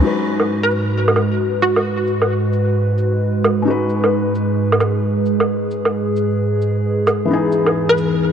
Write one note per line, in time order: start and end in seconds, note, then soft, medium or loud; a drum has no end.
0.00 7.26 G#2 medium
0.00 3.61 G#3 medium
0.00 7.27 G#3 medium
0.00 3.64 D#4 medium
0.00 3.63 F#4 medium
0.00 7.26 B4 medium
0.04 3.65 F#4 medium
0.04 3.66 B4 medium
0.25 cabasa medium
0.40 low woodblock soft
0.63 0.87 B4 medium
0.71 cabasa medium
1.08 low woodblock medium
1.16 cabasa medium
1.16 low woodblock soft
1.62 2.27 F#4 medium
1.62 cabasa medium
1.76 low woodblock soft
2.07 cabasa medium
2.22 low woodblock soft
2.53 cabasa medium
2.98 cabasa medium
3.44 cabasa medium
3.44 low woodblock medium
3.62 7.26 G#3 medium
3.62 7.27 D#4 medium
3.68 7.29 F#4 medium
3.68 8.32 G#4 medium
3.68 7.30 B4 medium
3.90 cabasa medium
4.04 low woodblock soft
4.35 cabasa medium
4.72 low woodblock medium
4.80 cabasa medium
4.80 low woodblock soft
5.26 cabasa medium
5.40 low woodblock soft
5.71 cabasa medium
5.85 low woodblock soft
6.17 cabasa medium
6.62 cabasa medium
7.07 cabasa medium
7.07 low woodblock soft
7.25 8.32 E3 medium
7.25 8.32 B3 medium
7.31 8.32 E2 medium
7.31 8.32 E3 medium
7.31 8.32 D#4 medium
7.31 8.32 G#4 medium
7.52 cabasa medium
7.66 low woodblock soft
7.89 8.13 B4 medium
7.98 cabasa medium